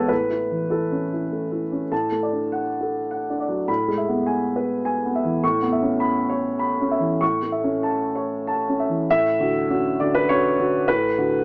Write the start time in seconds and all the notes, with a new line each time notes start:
Already playing: A2 E3 G#3 B3 E4 A4 B4 C#5
0.08 A2 B4
0.30 E4
0.51 E3
0.70 E4 A4
0.91 C#4
1.12 E4
1.32 A3
1.52 E4
1.72 C#4
1.91 A2 A5
2.12 A3
2.23 D5
2.32 D4
2.52 F#5
2.81 A4
3.11 F#5
3.30 D4
3.40 D5
3.48 F#3
3.68 A2 B5
3.88 G#3
3.98 E5
4.08 B3
4.26 G#5
4.56 B4
4.85 G#5
5.06 B3
5.15 E5
5.24 E3
5.44 A2 C#6
5.62 B3
5.72 E5
5.82 C#4
6.00 B5
6.30 C#5
6.59 B5
6.81 C#4
6.91 E5
7.00 E3
7.21 A2 C#6
7.42 A3
7.52 E5
7.64 C#4
7.83 A5
8.15 C#5
8.47 A5
8.69 C#4
8.80 E5
8.89 E3
9.10 A2 E5
9.40 D3 F#4
9.70 C#4 F#4
10.00 D3 F#4 D5
10.15 B4
10.29 C#4 F#4 C#5
10.59 D3 F#4
10.88 A2 B4
11.18 D3 F#4